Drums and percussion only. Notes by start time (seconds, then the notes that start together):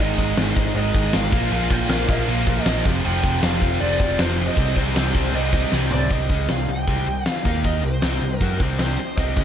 0.18 kick, crash
0.37 snare, crash
0.57 kick, crash
0.76 crash
0.94 kick, crash
1.13 snare, crash
1.32 kick, crash
1.52 crash
1.70 kick, crash
1.90 snare, crash
2.08 kick, crash
2.28 crash
2.47 kick, crash
2.66 snare, crash
2.85 kick, crash
3.05 crash
3.24 kick, crash
3.43 snare, crash
3.62 kick, crash
3.81 crash
4.00 kick, crash
4.19 snare, crash
4.39 crash
4.57 kick, crash
4.76 kick, crash
4.96 snare, crash
5.15 kick, crash
5.34 crash
5.53 kick, crash
5.72 snare
5.91 floor tom
6.10 kick, open hi-hat
6.30 kick, open hi-hat
6.49 snare, open hi-hat
6.69 open hi-hat
6.88 kick, open hi-hat
7.06 open hi-hat
7.26 snare, open hi-hat
7.36 snare
7.45 kick, open hi-hat
7.64 kick, open hi-hat
7.84 open hi-hat
8.02 snare, open hi-hat
8.22 open hi-hat
8.41 kick, open hi-hat
8.60 kick, open hi-hat
8.79 snare, open hi-hat
8.99 open hi-hat
9.18 kick, open hi-hat
9.37 kick, open hi-hat